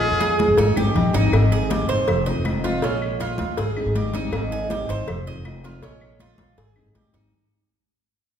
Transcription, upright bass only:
0.11 0.47 F2 medium
0.48 0.57 G1 medium
0.57 0.76 G#1 medium
0.76 0.94 G1 medium
0.95 1.12 A#1 medium
1.14 1.31 G#1 medium
1.32 1.86 G#1 loud
1.89 2.07 F#1 medium
2.07 2.34 F1 loud
2.36 2.80 F1 medium
2.83 3.36 A#1 loud
3.40 3.57 D#2 medium
3.58 3.85 G#1 loud
3.86 4.30 G#1 loud
4.33 4.86 G#1 loud
4.89 5.06 G#1 medium
5.07 5.34 F1 loud
5.36 5.80 F1 medium
5.82 6.36 A#1 loud
6.38 6.57 A#1 medium
6.58 6.84 G#1 loud
6.86 6.95 G#1 loud
7.14 7.31 G#1 loud

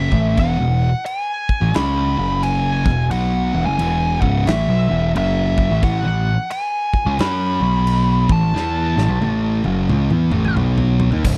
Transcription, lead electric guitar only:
0.00 0.41 E5 medium
0.39 1.05 F#5 medium
1.06 1.76 G#5 medium
1.75 2.45 B5 medium
2.43 3.11 G#5 medium
3.11 3.65 F#5 loud
3.66 4.18 G#5 loud
4.21 4.48 F#5 medium
4.47 5.12 E5 medium
5.18 5.81 E5 medium
5.84 6.51 F#5 medium
6.52 7.21 G#5 medium
7.21 8.33 B5 loud
8.32 10.54 A5 medium

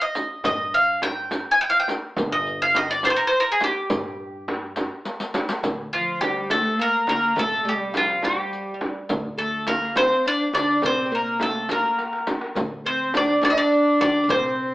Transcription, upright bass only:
0.44 1.43 G2 medium
2.17 3.16 G1 loud
3.90 4.89 G2 loud
5.63 6.62 D2 loud
7.07 7.32 D3 medium
7.36 8.35 C2 medium
9.09 10.08 D2 loud
10.53 10.78 D3 medium
10.82 11.81 C2 medium
12.55 13.54 D2 loud
14.00 14.25 D3 medium
14.28 14.74 C2 loud

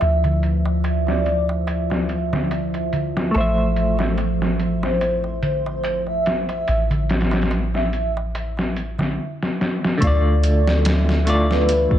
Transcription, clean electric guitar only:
0.00 3.28 D3 medium
0.00 3.30 A3 medium
0.00 3.32 F4 medium
0.00 3.33 D5 medium
3.31 9.16 A3 medium
3.31 3.37 A4 medium
3.38 9.20 C5 medium
3.38 9.21 E5 medium
9.98 11.20 D3 medium
9.98 11.22 A3 medium
10.04 11.23 F4 medium
10.04 11.25 D5 medium
11.25 11.99 D3 medium
11.25 11.99 A3 medium
11.25 11.99 F4 medium
11.30 11.99 D5 medium

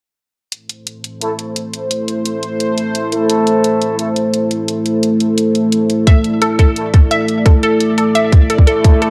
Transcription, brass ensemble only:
1.21 1.30 A3 medium
1.21 1.30 E4 medium
1.21 1.30 A4 loud
3.12 3.97 A3 loud
3.12 3.97 E4 medium
3.12 3.97 A4 loud
3.99 4.08 A3 medium
3.99 4.08 E4 medium
3.99 4.08 A4 loud
6.76 6.85 A3 medium
6.76 6.85 E4 medium
6.76 6.85 A4 loud
8.67 9.10 A3 loud
8.67 9.10 E4 medium
8.67 9.10 A4 loud

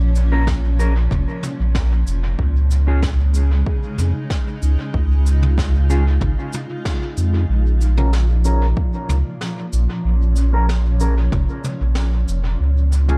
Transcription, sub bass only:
0.00 1.08 A#1 loud
1.11 1.25 F1 medium
1.60 2.04 A#1 medium
2.07 2.35 F1 medium
2.39 3.63 C#2 medium
3.98 4.13 F2 medium
4.62 4.77 C#2 loud
4.94 6.19 C#2 loud
6.22 6.36 G#1 medium
7.17 7.46 F2 medium
7.49 8.74 A#1 loud
9.09 9.23 C#2 medium
9.73 9.87 A#1 loud
10.05 11.29 A#1 medium
11.32 11.47 F1 medium
11.81 12.25 A#1 medium
12.28 12.56 F1 medium
12.60 13.18 C#2 medium

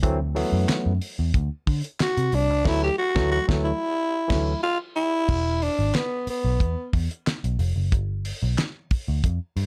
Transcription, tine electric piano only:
0.02 0.18 E3 loud
0.02 0.18 F#3 medium
0.02 0.18 A3 medium
0.02 0.18 C4 loud
0.35 0.92 E3 medium
0.35 0.92 F#3 medium
0.35 0.92 A3 medium
0.35 0.93 B3 loud
2.64 2.88 E3 loud
2.64 2.88 F#3 loud
2.64 2.88 A3 loud
3.15 3.38 E3 loud
3.15 3.38 F#3 loud
3.15 3.38 A3 loud
3.48 3.70 E3 loud
3.48 3.71 F#3 medium
3.48 3.71 A3 loud
4.28 4.52 E3 loud
4.28 4.52 F#3 medium
4.28 4.53 A3 medium

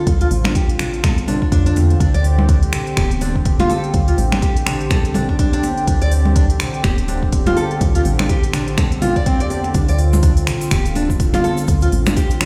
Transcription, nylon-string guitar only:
0.21 0.27 F4 medium
0.45 0.51 D4 medium
0.56 0.68 G4 medium
0.79 0.92 D4 medium
1.04 1.16 A4 medium
1.28 1.41 D4 medium
1.42 1.47 D4 medium
1.52 1.65 D4 loud
1.66 1.76 D4 loud
2.00 2.13 D4 medium
2.14 2.23 D5 loud
2.49 2.56 D4 medium
2.97 3.10 G4 medium
3.21 3.35 D4 medium
3.60 3.69 F4 loud
3.69 3.82 A4 loud
4.08 4.13 F4 medium
4.32 4.38 D4 medium
4.42 4.55 G4 medium
4.66 4.79 D4 medium
4.90 5.03 A4 medium
5.15 5.28 D4 medium
5.29 5.34 D4 medium
5.39 5.52 D4 loud
5.53 5.63 D4 loud
5.88 6.00 D4 medium
6.02 6.11 D5 loud
6.36 6.44 D4 medium
6.84 6.97 G4 medium
7.08 7.22 D4 medium
7.47 7.56 F4 loud
7.57 7.70 A4 loud
7.95 8.01 F4 medium
8.19 8.25 D4 medium
8.29 8.42 G4 medium
8.53 8.66 D4 medium
8.78 8.90 A4 medium
9.02 9.15 F4 loud
9.16 9.26 D5 loud
9.26 9.39 C4 loud
9.40 9.49 D5 medium
9.50 9.63 D5 medium
9.75 9.87 D4 medium
9.89 9.98 D5 loud
10.23 10.31 D4 medium
10.72 10.84 G4 medium
10.96 11.09 D4 medium
11.34 11.43 F4 loud
11.44 11.57 A4 loud
11.82 11.88 F4 medium
12.06 12.12 D4 medium
12.17 12.29 G4 medium
12.41 12.45 D4 medium

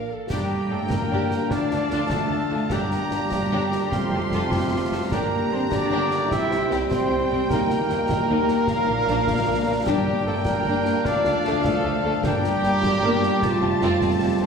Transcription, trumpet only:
0.32 0.73 G4 medium
0.72 0.90 A4 medium
0.91 1.53 A#4 medium
1.51 2.13 D5 medium
2.11 2.51 A4 medium
2.52 2.73 A4 medium
2.72 5.12 G4 medium
5.12 5.51 A#4 medium
5.53 5.61 C5 medium
5.73 6.30 D5 medium
6.32 6.69 E5 loud
6.91 7.28 C5 medium
7.31 7.50 C5 medium
7.50 9.83 A#4 loud
9.87 10.26 G4 medium
10.26 10.35 A4 medium
10.46 11.07 A#4 medium
11.06 11.64 D5 loud
11.65 12.04 A4 medium
12.04 12.13 A4 medium
12.25 14.30 G4 loud

